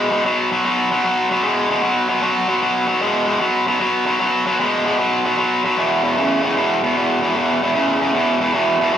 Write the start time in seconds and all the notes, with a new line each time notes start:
0.11 B2 G#3
0.25 B2 F#3
0.52 B2 F#3
0.65 B2 F#3
0.91 B2 F#3
1.04 B2 F#3
1.31 B2 F#3
1.43 B2 G#3
1.70 B2 G#3
1.83 B2 F#3
2.09 B2 F#3
2.22 B2 F#3
2.48 B2 F#3
2.62 B2 F#3
2.87 B2 F#3
3.01 B2 G#3
3.27 B2 G#3
3.40 B2 F#3
3.67 B2 F#3
3.80 B2 F#3
4.06 B2 F#3
4.20 B2 F#3
4.46 B2 F#3
4.60 B2 G#3
4.86 B2 G#3
4.99 B2 F#3
5.25 B2 F#3
5.37 B2 F#3
5.65 B2 F#3
5.77 E2 B2
6.03 E2 B2
6.17 E2 C#3
6.43 E2 C#3
6.56 E2 B2
6.83 E2 B2
6.96 E2 B2
7.22 E2 B2
7.36 E2 B2
7.62 E2 B2
7.74 E2 C#3
8.00 E2 C#3
8.14 E2 B2
8.41 E2 B2
8.54 E2 B2
8.80 E2 B2
8.94 B2 F#3